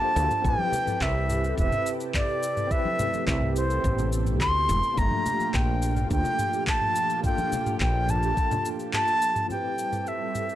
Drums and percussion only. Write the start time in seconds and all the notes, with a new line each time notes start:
0.16 shaker
0.31 mid tom, shaker
0.44 kick, mid tom, shaker
0.59 high conga
0.72 low conga, shaker
0.87 mid tom, high conga, shaker
1.01 kick, clap, shaker
1.30 mid tom, shaker
1.44 shaker
1.58 kick, shaker
1.72 mid tom, low conga, shaker
1.86 shaker
2.00 shaker
2.14 kick, clap, mid tom, shaker
2.43 shaker
2.57 mid tom, shaker
2.71 kick, shaker
2.85 high conga
2.99 mid tom, low conga, shaker
3.14 high conga, shaker
3.27 kick, clap, shaker
3.42 mid tom
3.56 shaker
3.70 shaker
3.84 kick, mid tom, shaker
3.98 low conga, shaker
4.12 shaker
4.26 mid tom, shaker
4.41 kick, clap, shaker
4.69 mid tom, shaker
4.83 shaker
4.97 kick, shaker
5.11 mid tom, high conga
5.26 low conga, shaker
5.40 high conga, shaker
5.54 kick, clap, mid tom, shaker
5.82 shaker
5.96 mid tom, shaker
6.11 kick, shaker
6.24 low conga, shaker
6.39 mid tom, shaker
6.53 shaker
6.67 kick, clap, shaker
6.82 mid tom
6.95 shaker
7.10 shaker
7.24 kick, mid tom, shaker
7.38 high conga, shaker
7.52 low conga, shaker
7.65 mid tom, high conga, shaker
7.80 kick, clap, shaker
8.09 mid tom, shaker
8.23 shaker
8.37 kick, shaker
8.51 mid tom, low conga, shaker
8.65 shaker
8.79 shaker
8.93 clap, mid tom, shaker
9.08 shaker
9.22 shaker
9.36 mid tom, shaker
9.50 mid tom, shaker
9.78 shaker
9.93 mid tom, shaker
10.07 shaker
10.35 mid tom, shaker
10.49 shaker